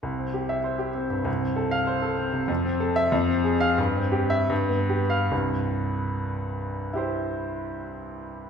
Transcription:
\new Staff \with { instrumentName = "Grand piano" } { \time 2/4 \key c \major \tempo 4 = 88 << { r8. e''8 r8. | r8. f''8 r8. | r8. e''16 r8. f''16 | r8. e''16 r8. f''16 |
r2 | <e' g' c''>2 | } \\ { c,16 c'16 g'8 c''16 g'16 c'16 g,16 | c,16 c'16 a'8 c''16 a'16 c'16 c16 | f,16 c'16 a'8 f,16 c'16 aes'8 | g,16 c'16 g'8 g,16 b16 g'8 |
<c, g,>2~ | <c, g,>2 | } >> }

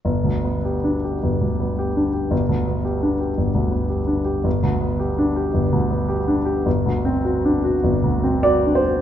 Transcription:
\new Staff \with { instrumentName = "Grand piano" } { \time 4/4 \key g \major \tempo 4 = 108 << { r1 | r1 | r1 | r2. d''8 c''8 | } \\ { \tuplet 3/2 { g,,8 d,8 b8 g'8 d'8 g'8 g,,8 d,8 b8 g'8 d'8 g'8 } | \tuplet 3/2 { g,,8 d,8 b8 g'8 d'8 g'8 g,,8 d,8 b8 g'8 d'8 g'8 } | \tuplet 3/2 { g,,8 d,8 b8 g'8 d'8 g'8 g,,8 d,8 b8 g'8 d'8 g'8 } | \tuplet 3/2 { g,,8 d,8 c'8 fis'8 d'8 fis'8 g,,8 d,8 c'8 fis'8 d'8 fis'8 } | } >> }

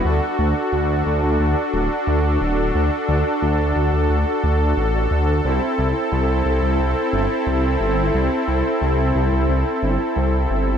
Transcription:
<<
  \new Staff \with { instrumentName = "Supersaw synth" } { \time 4/4 \key d \mixolydian \tempo 4 = 89 << { a'1~ | a'1~ | a'1~ | a'1 | } \\ { <d' fis'>1~ | <d' fis'>1 | <c' e'>1~ | <c' e'>1 | } >> }
  \new Staff \with { instrumentName = "Detuned saw bass" } { \clef bass \time 4/4 \key d \mixolydian d,16 r16 d,16 r16 d,8 d,16 d,16 d,16 r16 d,,16 r16 d,8 d,,8 | d,16 r16 d,16 r16 d,8 d,16 d,16 d,16 r16 d,8 a,,8 d,8 | c,16 r16 c,16 r16 c,8 c,16 c,16 c,16 r16 g,,16 r16 c,8 g,,8 | c,16 r16 c,16 r16 c,8 c,16 c,16 c,16 r16 g,,16 r16 c,8 g,,8 | }
>>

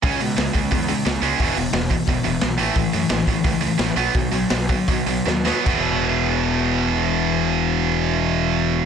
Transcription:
<<
  \new Staff \with { instrumentName = "Distorted electric guitar" } { \clef bass \time 4/4 \key e \major \tempo 4 = 167 <cis gis cis'>8 <cis gis>8 <cis gis>8 <cis gis>8 <cis gis>8 <cis gis>8 <cis gis>8 <cis gis cis'>8 | <e, b, e>8 <e, b,>8 <e, b,>8 <e, b,>8 <e, b,>8 <e, b,>8 <e, b,>8 <a, e a>8 | <a, e>8 <a, e>8 <a, e>8 <a, e>8 <a, e>8 <a, e>8 <a, e>8 <b, fis b>8 | <b, fis>8 <b, fis>8 <b, fis>8 <b, fis>8 <b, fis>8 <b, fis>8 <b, fis>8 <b, fis b>8 |
<e, b, e>1~ | <e, b, e>1 | }
  \new Staff \with { instrumentName = "Distorted electric guitar" } { \clef bass \time 4/4 \key e \major <cis gis cis'>8 <cis gis>8 <cis gis>8 <cis gis>8 <cis gis>8 <cis gis>8 <cis gis>8 <cis gis cis'>8 | <e, b, e>8 <e, b,>8 <e, b,>8 <e, b,>8 <e, b,>8 <e, b,>8 <e, b,>8 <a, e a>8 | <a, e>8 <a, e>8 <a, e>8 <a, e>8 <a, e>8 <a, e>8 <a, e>8 <b, fis b>8 | <b, fis>8 <b, fis>8 <b, fis>8 <b, fis>8 <b, fis>8 <b, fis>8 <b, fis>8 <b, fis b>8 |
<e, b, e>1~ | <e, b, e>1 | }
  \new Staff \with { instrumentName = "Picked electric bass" } { \clef bass \time 4/4 \key e \major cis,8 b,8 cis,8 cis,8 e,4 cis,8 cis,8 | e,,8 e,,8 e,,4 e,,8 e,,8 b,,8 a,,8 | a,,8 fis,8 a,,8 a,,8 cis,4 a,,8 b,,8 | b,,8 b,,8 b,,4 b,,8 b,,8 dis,4 |
e,,1~ | e,,1 | }
  \new DrumStaff \with { instrumentName = "Drums" } \drummode { \time 4/4 <hho bd>8 hho8 <hho sn>8 <hho bd>8 <hho bd>8 hho8 <hho sn>8 hho8 | <hho bd>8 hho8 <hho sn>8 <hho bd>8 <hho bd>8 hho8 <hho sn>8 hho8 | <hho bd>8 hho8 <hho sn>8 <hho bd>8 <hho bd>8 hho8 <hho sn>8 hho8 | <hho bd>8 hho8 <hho sn>8 <hho bd>8 <hho bd>8 hho8 sn8 sn8 |
<cymc bd>4 r4 r4 r4 | r4 r4 r4 r4 | }
>>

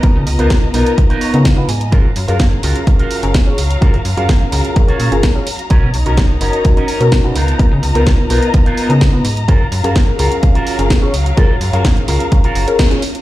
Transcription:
<<
  \new Staff \with { instrumentName = "String section" } { \time 4/4 \key fis \major \tempo 4 = 127 << { ais''1 | ais''1~ | ais''1~ | ais''1~ |
ais''1~ | ais''1~ | ais''1 | } \\ { <b eis' dis''>1 | <fis eis''>1~ | <fis eis''>1 | <dis' cis''>2.~ <dis' cis''>8 <b eis' dis''>8~ |
<b eis' dis''>1 | <fis eis''>1~ | <fis eis''>1 | } >> }
  \new Staff \with { instrumentName = "Clean electric guitar" } { \time 4/4 \key fis \major << { r2 r8 cis''8 eis''8 gis''8 | r1 | r1 | r1 |
r1 | r1 | r1 | } \\ { <b dis' eis' ais'>8 r16 <b dis' eis' ais'>16 r8 <b dis' eis' ais'>8 r16 <b dis' eis' ais'>8 r4 r16 | <eis' fis' ais'>8 r16 <eis' fis' ais'>16 r8 <eis' fis' ais'>8 r16 <eis' fis' ais'>8 r4 r16 | <eis' fis' ais'>8 r16 <eis' fis' ais'>16 r8 <eis' fis' ais'>8 r16 <eis' fis' cis''>8 r4 r16 | <cis' dis' ais'>8 r16 <cis' dis' ais'>16 r8 <cis' dis' ais'>8 r16 <cis' dis' ais'>8 r8. <b dis' eis' ais'>8~ |
<b dis' eis' ais'>8 r16 <b dis' eis' ais'>16 r8 <b dis' eis' ais'>8 r16 <b dis' eis' ais'>8 r4 r16 | <eis' fis' ais'>8 r16 <eis' fis' ais'>16 r8 <eis' fis' ais'>8 r16 <eis' fis' ais'>8 r4 r16 | <eis' fis' ais'>8 r16 <eis' fis' ais'>16 r8 <eis' fis' ais'>8 r16 <eis' fis' ais'>8 r4 r16 | } >> }
  \new Staff \with { instrumentName = "Reed electric piano" } { \time 4/4 \key fis \major <b dis' eis' ais'>16 r8 <b dis' eis' ais'>8. <b dis' eis' ais'>8 <b dis' eis' ais'>8. <b dis' eis' ais'>8 <b dis' eis' b'>16 r8 | <cis' eis' gis' ais'>16 r8 <cis' gis' ais' eis''>8. <cis' eis' gis' ais'>8 <cis' gis' ais' eis''>8. <cis' eis' gis' ais'>8 <cis' eis' gis' cis''>16 r8 | <cis' eis' gis' ais'>16 r8 <cis' gis' ais' eis''>8. <cis' eis' gis' ais'>8 <cis' gis' ais' eis''>8. <cis' eis' gis' ais'>8 <cis' eis' gis' cis''>16 r8 | <cis' dis' fis' ais'>16 r8 <cis' dis' fis' ais'>8. <cis' dis' fis' ais'>8 <cis' dis' fis' ais'>8. <cis' dis' fis' ais'>8 <cis' dis' fis' b'>16 r8 |
<b dis' eis' ais'>16 r8 <b dis' eis' ais'>8. <b dis' eis' ais'>8 <b dis' eis' ais'>8. <b dis' eis' ais'>8 <b dis' eis' b'>16 r8 | <cis' eis' gis' ais'>16 r8 <cis' gis' ais' eis''>8. <cis' eis' gis' ais'>8 <cis' gis' ais' eis''>8. <cis' eis' gis' ais'>8 <cis' eis' gis' cis''>16 r8 | <cis' eis' gis' ais'>16 r8 <cis' gis' ais' eis''>8. <cis' eis' gis' ais'>8 <cis' gis' ais' eis''>8. <cis' eis' gis' ais'>8 <cis' eis' gis' cis''>16 r8 | }
  \new Staff \with { instrumentName = "FM bass" } { \clef bass \time 4/4 \key fis \major cis,16 cis16 cis,16 cis,8. b,,16 r4 cis8. gis,8 | fis,16 fis,,16 fis,16 fis,8. cis,16 r4 fis,,8. cis,8 | fis,16 fis,,16 fis,16 fis,8. cis,16 r16 cis,16 r16 ais,16 fis,,8. r8 | b,,16 b,16 b,,16 b,,8. fis,,16 r4 b,8. cis,8 |
cis,16 cis16 cis,16 cis,8. b,,16 r4 cis8. gis,8 | fis,16 fis,,16 fis,16 fis,8. cis,16 r4 fis,,8. cis,8 | fis,16 fis,,16 fis,16 fis,8. cis,16 r8. fis,,16 r4 r16 | }
  \new DrumStaff \with { instrumentName = "Drums" } \drummode { \time 4/4 <hh bd>8 hho16 hh16 <hh bd sn>8 hho16 hh16 <hh bd>16 hh16 hho16 hh16 <hh bd sn>8 hho16 hh16 | <hh bd>8 hho16 hh16 <hh bd sn>8 hho16 hh16 <hh bd>16 hh16 hho16 hh16 <hh bd sn>8 hho16 hh16 | <hh bd>16 hh16 hho16 hh16 <hh bd sn>8 hho16 hh16 <hh bd>16 hh16 hho16 hh16 <hh bd sn>8 hho16 hh16 | <hh bd>8 hho16 hh16 <hh bd sn>8 hho16 hh16 <hh bd>16 hh16 hho16 hh16 <hh bd sn>8 hho16 hh16 |
<hh bd>8 hho16 hh16 <hh bd sn>8 hho16 hh16 <hh bd>16 hh16 hho16 hh16 <hh bd sn>8 hho16 hh16 | <hh bd>8 hho16 hh16 <hh bd sn>8 hho16 hh16 <hh bd>16 hh16 hho16 hh16 <hh bd sn>8 hho16 hh16 | <hh bd>8 hho16 hh16 <hh bd sn>16 hh16 hho16 hh16 <hh bd>16 hh16 hho16 hh16 <hh bd sn>16 hh16 hho16 hh16 | }
>>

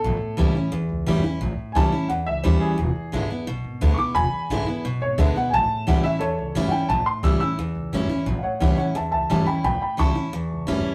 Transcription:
<<
  \new Staff \with { instrumentName = "Upright piano" } { \time 4/4 \key a \mixolydian \tempo 4 = 175 a'4. r2 r8 | r4 <gis'' a''>4 fis''8 e''8 c''8 gis'8~ | gis'4. r2 <cis''' d'''>8 | <gis'' b''>2 r8 cis''8 e''8 fis''8 |
<gis'' a''>4 fis''8 e''8 <a' cis''>4 r8 <fis'' g''>8 | a''8 c'''8 e'''8 e'''2 r8 | r8 <cis'' f'' fis''>8 <cis'' fis''>8 <cis'' fis''>8 <e'' a''>8 <e'' a''>8 <e'' a''>8 <g'' b''>8 | <g'' b''>8 <g'' b''>8 <a'' cis'''>2. | }
  \new Staff \with { instrumentName = "Steel-string acoustic guitar" } { \time 4/4 \key a \mixolydian << { r4 <e g cis' e'>8 <cis' e'>8 r4 <e g cis' e'>8 <cis' e'>8 | r4 <e g cis' e'>8 <cis' e'>8 r4 <e g cis' e'>4 | r4 <d gis b e'>8 <b e'>8 r4 <d gis b e'>8 <b e'>8 | r4 <d gis b e'>8 <b e'>8 r4 <d gis b e'>8 <b e'>8 |
r4 <e g cis' e'>8 <cis' e'>8 r4 <e g cis' e'>8 <cis' e'>8 | r4 <e g cis' e'>8 <cis' e'>8 r4 <e g cis' e'>8 <cis' e'>8 | r4 <e g cis' e'>8 <cis' e'>8 r4 <e g cis' e'>8 <cis' e'>8 | r4 <e g cis' e'>8 <cis' e'>8 r4 <e g cis' e'>4 | } \\ { a,2 e,2 | a,2 e,2 | e,2 b,2 | e,2 b,2 |
a,2 e,2 | a,2 e,2 | a,2 e,2 | a,2 e,2 | } >> }
  \new Staff \with { instrumentName = "Upright bass" } { \clef bass \time 4/4 \key a \mixolydian a,,8 r8 cis,8 r8 e,8 cis,8 g,,8 r8 | a,,8 r8 cis,8 r8 e,8 cis,8 dis,8 r8 | e,,8 r8 gis,,8 r8 b,,8 gis,,8 d,8 r8 | e,,8 r8 gis,,8 r8 b,,8 gis,,8 d,8 r8 |
a,,8 r8 cis,8 r8 e,8 cis,8 g,,8 r8 | a,,8 r8 cis,8 r8 e,8 cis,8 g,,8 r8 | a,,8 r8 cis,8 r8 e,8 cis,8 g,,8 r8 | a,,8 r8 cis,8 r8 e,8 cis,8 g,,8 r8 | }
>>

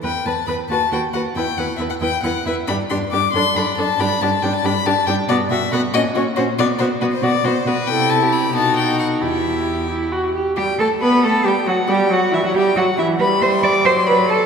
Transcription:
<<
  \new Staff \with { instrumentName = "Violin" } { \time 6/8 \key e \minor \tempo 4. = 91 g''8 a''8 b''8 a''8 g''8 fis''8 | g''8 fis''8 e''16 fis''16 g''8 fis''8 e''8 | b''8 c'''8 d'''8 c'''8 b''8 a''8 | b''8 a''8 g''16 a''16 b''8 a''8 g''8 |
d''8 e''8 fis''8 dis''8 cis''8 c''8 | d''8 c''8 b'16 c''16 d''8 c''8 b'8 | g''8 a''8 b''8 a''8 g''8 fis''8 | e''4. r4. |
g'8 a'8 b'8 a'8 g'8 fis'8 | g'8 fis'8 e'16 fis'16 g'8 fis'8 e'8 | e''4. d''4. | }
  \new Staff \with { instrumentName = "Violin" } { \time 6/8 \key e \minor b'8 b'8 b'8 b'8 b'8 b'8 | b'8 b'8 b'8 b'8 b'8 b'8 | g'8 g'8 g'8 a'8 a'8 a'8 | g'8 g'8 g'8 g'8 g'8 g'8 |
fis'8 fis'8 fis'8 fis'8 fis'8 fis'8 | fis'8 fis'8 fis'8 fis'8 fis'8 fis'8 | a'8. g'8. fis'4. | g'2~ g'8 r8 |
g''8 a''8 b''8 a''8 g''8 fis''8 | g''8 fis''8 e''16 fis''16 g''8 fis''8 e''8 | b''8 c'''8 d'''8 c'''8 b''8 a''8 | }
  \new Staff \with { instrumentName = "Viola" } { \time 6/8 \key e \minor b'8 b'8 b'8 fis'8 fis'8 fis'8 | e'8 e'8 e'8 e'8 e'8 e'8 | d'8 d'8 d'8 d'8 d'8 d'8 | d'8 d'8 d'8 d'8 d'8 d'8 |
b8 b8 b8 cis'8 cis'8 cis'8 | b8 b8 b8 b8 b8 b8 | e'4. dis'4. | e'4. e'8 fis'8 g'8 |
g8 a8 b8 a8 g8 fis8 | g8 fis8 e16 fis16 g8 fis8 e8 | g4. fis4. | }
  \new Staff \with { instrumentName = "Cello" } { \clef bass \time 6/8 \key e \minor e,8 e,8 e,8 dis,8 dis,8 dis,8 | e,8 e,8 e,8 e,8 e,8 e,8 | g,8 g,8 g,8 fis,8 fis,8 fis,8 | g,8 g,8 g,8 g,8 g,8 g,8 |
b,8 b,8 b,8 ais,8 ais,8 ais,8 | b,8 b,8 b,8 b,8 b,8 b,8 | c4. b,4. | e,2~ e,8 r8 |
g'8 a'8 b'8 a'8 g'8 fis'8 | g'8 fis'8 e'16 fis'16 g'8 fis'8 e'8 | b'8 c''8 d''8 c''8 b'8 a'8 | }
>>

